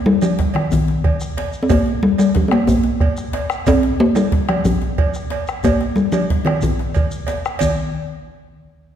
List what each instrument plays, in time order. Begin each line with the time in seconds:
0.06 talking drum G3
0.22 talking drum F3, bombo rim, cowbell, shekere
0.39 bombo low, djembe slap
0.54 talking drum D#3, bombo rim, cowbell
0.72 talking drum D#3, djembe tone, djembe bass, shekere
0.88 djembe slap
1.04 bombo rim, bombo low, cowbell
1.20 bombo rim, shekere
1.37 cowbell, djembe slap
1.53 shekere
1.63 talking drum C4
1.69 talking drum A#3, bombo rim, bombo low, cowbell, djembe tone, djembe bass, shekere
1.86 djembe slap
2.03 talking drum G3
2.18 talking drum G3, bombo rim, cowbell, shekere
2.35 talking drum F3, bombo low, djembe slap
2.48 talking drum C4, bombo rim, cowbell
2.52 talking drum A#3
2.67 talking drum A#3, djembe tone, djembe bass, shekere
2.84 djembe slap
3.00 bombo rim, bombo low, cowbell
3.17 bombo rim, shekere
3.33 cowbell, djembe slap
3.50 bombo rim, shekere
3.66 talking drum C4, bombo rim, bombo low, cowbell, djembe tone, djembe bass, shekere
3.83 djembe slap
4.00 talking drum A#3
4.15 talking drum G3, bombo rim, cowbell, shekere
4.32 bombo low, djembe slap
4.49 talking drum F3, bombo rim, cowbell
4.65 talking drum F3, djembe tone, djembe bass, shekere
4.82 djembe slap
4.98 bombo rim, bombo low, cowbell
5.14 bombo rim, shekere
5.30 cowbell, djembe slap
5.47 bombo rim, shekere
5.64 talking drum A#3, bombo low, cowbell, djembe slap, djembe tone, djembe bass, shekere
5.80 bombo rim, djembe slap
5.96 talking drum G3, shekere
6.12 talking drum F3, cowbell, djembe slap, shekere
6.30 bombo low, djembe slap
6.45 talking drum D#3, bombo rim, cowbell
6.62 talking drum D#3, djembe slap, djembe tone, djembe bass, shekere
6.79 djembe slap
6.94 bombo low, cowbell, shekere
7.11 shekere
7.27 cowbell, djembe slap, shekere
7.45 bombo rim, shekere
7.59 talking drum D#3, bombo low, cowbell, djembe bass, shekere